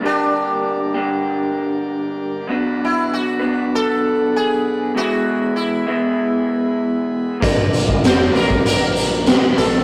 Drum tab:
HH |----------------|----------------|----------------|x-x-x-x-x-x-x-x-|
SD |----------------|----------------|----------------|----o-------o---|
BD |----------------|----------------|----------------|o--o---o--------|